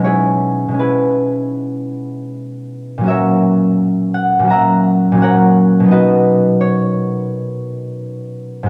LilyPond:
\new Staff \with { instrumentName = "Harp" } { \time 4/4 \key b \major \tempo 4 = 83 << { cis''4 b'2. | e''4. fis''8 ais''4 fis''4 | dis''4 cis''2. | } \\ { <b, gis b cis' e' gis' b'>4 <b, gis cis' e' gis'>2. | <ais, fis cis' fis' ais' cis''>2 <ais, fis cis' fis' e'' fis''>4 <ais, fis cis' fis' ais' cis''>4 | <b, fis b dis' fis' b'>1 | } >> }